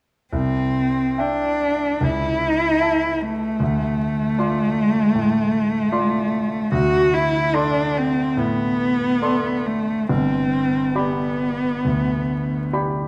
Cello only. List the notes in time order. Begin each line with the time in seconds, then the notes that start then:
0.34 C4
1.20 D4
2.03 E4
3.21 A3
6.74 F#4
7.14 E4
7.55 D4
7.97 C4
8.38 B3
9.66 A3
10.11 C4
10.98 B3